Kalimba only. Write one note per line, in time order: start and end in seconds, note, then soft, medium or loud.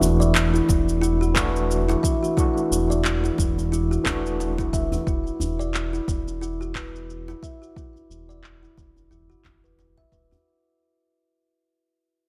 0.20 0.52 D5 medium
0.54 1.01 E4 medium
1.02 1.19 E4 medium
1.21 1.29 F#4 medium
1.36 1.87 B4 medium
1.89 2.02 E4 loud
2.03 2.21 E5 medium
2.23 2.36 F#4 medium
2.37 2.55 E4 medium
2.90 3.22 D5 medium
3.24 3.70 E4 medium
3.72 3.89 E4 medium
3.91 3.99 F#4 medium
4.06 4.56 B4 medium
4.58 4.71 E4 medium
4.73 4.91 E5 medium
4.92 5.05 F#4 medium
5.07 5.25 E4 medium
5.59 5.91 D5 medium
5.93 6.40 E4 medium
6.41 6.59 E4 medium
6.61 6.69 F#4 medium
6.75 7.26 B4 medium
7.28 7.41 E4 loud
7.43 7.61 E5 medium
7.62 7.75 F#4 medium
7.76 7.94 E4 medium
8.29 8.61 D5 medium
8.63 9.10 E4 medium
9.11 9.28 E4 medium
9.30 9.38 F#4 medium
9.45 9.63 E4 medium
9.64 9.78 B4 medium
9.98 10.11 E5 medium
10.12 10.30 B4 medium
10.31 10.44 F#4 medium